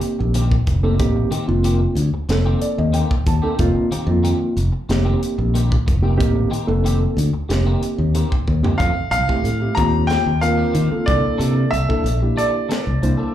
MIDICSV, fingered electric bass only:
0, 0, Header, 1, 3, 480
1, 0, Start_track
1, 0, Tempo, 650054
1, 733, Time_signature, 4, 2, 24, 8
1, 9854, End_track
2, 0, Start_track
2, 0, Title_t, "Fingered electric bass"
2, 0, Program_c, 0, 33
2, 151, Note_on_c, 0, 34, 82
2, 416, Note_off_c, 0, 34, 0
2, 496, Note_on_c, 0, 29, 69
2, 735, Note_off_c, 0, 29, 0
2, 735, Note_on_c, 0, 33, 98
2, 917, Note_off_c, 0, 33, 0
2, 1097, Note_on_c, 0, 29, 84
2, 1368, Note_off_c, 0, 29, 0
2, 1443, Note_on_c, 0, 38, 84
2, 1541, Note_off_c, 0, 38, 0
2, 1689, Note_on_c, 0, 29, 77
2, 1873, Note_off_c, 0, 29, 0
2, 2056, Note_on_c, 0, 39, 80
2, 2239, Note_off_c, 0, 39, 0
2, 2410, Note_on_c, 0, 39, 78
2, 2506, Note_off_c, 0, 39, 0
2, 2650, Note_on_c, 0, 29, 86
2, 2746, Note_off_c, 0, 29, 0
2, 3003, Note_on_c, 0, 41, 86
2, 3191, Note_off_c, 0, 41, 0
2, 3372, Note_on_c, 0, 29, 103
2, 3467, Note_off_c, 0, 29, 0
2, 3613, Note_on_c, 0, 29, 94
2, 3796, Note_off_c, 0, 29, 0
2, 3976, Note_on_c, 0, 34, 80
2, 4247, Note_off_c, 0, 34, 0
2, 4342, Note_on_c, 0, 29, 76
2, 4579, Note_off_c, 0, 29, 0
2, 4579, Note_on_c, 0, 33, 87
2, 4760, Note_off_c, 0, 33, 0
2, 4935, Note_on_c, 0, 29, 84
2, 5207, Note_off_c, 0, 29, 0
2, 5292, Note_on_c, 0, 38, 87
2, 5387, Note_off_c, 0, 38, 0
2, 5536, Note_on_c, 0, 29, 88
2, 5718, Note_off_c, 0, 29, 0
2, 5895, Note_on_c, 0, 39, 74
2, 6079, Note_off_c, 0, 39, 0
2, 6260, Note_on_c, 0, 39, 79
2, 6352, Note_off_c, 0, 39, 0
2, 6496, Note_on_c, 0, 41, 99
2, 6590, Note_off_c, 0, 41, 0
2, 6728, Note_on_c, 0, 36, 75
2, 6824, Note_off_c, 0, 36, 0
2, 6970, Note_on_c, 0, 45, 71
2, 7154, Note_off_c, 0, 45, 0
2, 7220, Note_on_c, 0, 39, 85
2, 7495, Note_off_c, 0, 39, 0
2, 7578, Note_on_c, 0, 39, 73
2, 7849, Note_off_c, 0, 39, 0
2, 7935, Note_on_c, 0, 51, 88
2, 8029, Note_off_c, 0, 51, 0
2, 8179, Note_on_c, 0, 36, 71
2, 8271, Note_off_c, 0, 36, 0
2, 8414, Note_on_c, 0, 48, 86
2, 8596, Note_off_c, 0, 48, 0
2, 8658, Note_on_c, 0, 36, 71
2, 8751, Note_off_c, 0, 36, 0
2, 8890, Note_on_c, 0, 34, 70
2, 9074, Note_off_c, 0, 34, 0
2, 9502, Note_on_c, 0, 36, 66
2, 9588, Note_off_c, 0, 36, 0
2, 9620, Note_on_c, 0, 36, 76
2, 9712, Note_off_c, 0, 36, 0
2, 9854, End_track
3, 0, Start_track
3, 0, Title_t, "Muted fingered electric bass strokes"
3, 1571, Note_on_c, 9, 29, 37
3, 1645, Note_off_c, 9, 29, 0
3, 2881, Note_on_c, 9, 29, 31
3, 2955, Note_off_c, 9, 29, 0
3, 5417, Note_on_c, 9, 29, 34
3, 5491, Note_off_c, 9, 29, 0
3, 6611, Note_on_c, 9, 29, 31
3, 6684, Note_off_c, 9, 29, 0
3, 8057, Note_on_c, 9, 29, 34
3, 8131, Note_off_c, 9, 29, 0
3, 9854, End_track
0, 0, End_of_file